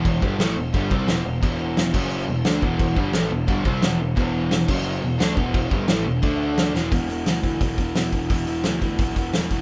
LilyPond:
<<
  \new Staff \with { instrumentName = "Overdriven electric guitar" } { \clef bass \time 4/4 \key e \minor \tempo 4 = 175 <e, b, e>8 <g, d g>8 <a, e a>8 <e, b,>8 <g, d g>8 <c g c'>8 <e, b, e>8 <e, b,>8 | <e, b, e>4. <fis, cis fis>4 <e, b,>8 <d a d'>8 <e, b, e>8~ | <e, b, e>8 <g, d g>8 <a, e a>8 <e, b,>8 <g, d g>8 <c g c'>8 <e, b, e>8 <e, b,>8 | <e, b, e>4. <fis, cis fis>4 <e, b,>8 <d a d'>8 <e, b, e>8~ |
<e, b, e>8 <g, d g>8 <a, e a>8 <e, b,>8 <d a d'>4. <e, b, e>8 | r1 | r1 | }
  \new Staff \with { instrumentName = "Overdriven electric guitar" } { \clef bass \time 4/4 \key e \minor <e, b, e>8 <g, d g>8 <a, e a>8 <e, b,>8 <g, d g>8 <c g c'>8 <e, b, e>8 <e, b,>8 | <e, b, e>4. <fis, cis fis>4 <e, b,>8 <d a d'>8 <e, b, e>8~ | <e, b, e>8 <g, d g>8 <a, e a>8 <e, b,>8 <g, d g>8 <c g c'>8 <e, b, e>8 <e, b,>8 | <e, b, e>4. <fis, cis fis>4 <e, b,>8 <d a d'>8 <e, b, e>8~ |
<e, b, e>8 <g, d g>8 <a, e a>8 <e, b,>8 <d a d'>4. <e, b, e>8 | <e, b, e>8 <e, b, e>8 <e, b, e>8 <e, b, e>8 <e, b, e>8 <e, b, e>8 <e, b, e>8 <e, b, e>8 | <e, b, e>8 <e, b, e>8 <e, b, e>8 <e, b, e>8 <e, b, e>8 <e, b, e>8 <e, b, e>8 <e, b, e>8 | }
  \new Staff \with { instrumentName = "Picked electric bass" } { \clef bass \time 4/4 \key e \minor e,,8 g,,8 a,,8 e,,8 g,,8 c,8 e,,8 e,,8 | e,,4. fis,,4 e,,8 d,8 e,,8~ | e,,8 g,,8 a,,8 e,,8 g,,8 c,8 e,,8 e,,8 | e,,4. fis,,4 e,,8 d,8 e,,8~ |
e,,8 g,,8 a,,8 e,,8 d,4. e,,8 | e,,4 d,8 d,8 b,,8 e,,8 e,,8 e,,8 | e,,4 d,8 d,8 b,,8 e,,8 e,,8 e,,8 | }
  \new DrumStaff \with { instrumentName = "Drums" } \drummode { \time 4/4 <cymc bd>8 bd8 <cymc sn>4 <cymc bd>8 bd8 <cymc sn>4 | <cymc bd>4 <cymc sn>8 <cymc bd>8 cymc4 <cymc sn>8 bd8 | <cymc bd>8 bd8 <cymc sn>4 <cymc bd>8 bd8 <cymc sn>4 | <cymc bd>4 <cymc sn>8 <cymc bd>8 cymc4 <cymc sn>8 bd8 |
<cymc bd>8 bd8 <cymc sn>4 <cymc bd>4 <cymc sn>8 sn8 | <hho bd>8 hho8 <hho sn>8 <hho bd>8 <hho bd>8 <hho bd>8 <hho sn>8 <hho bd>8 | <hho bd>8 hho8 <hho sn>8 <hho bd>8 <hho bd>8 <hho bd>8 <hho sn>8 <hho bd>8 | }
>>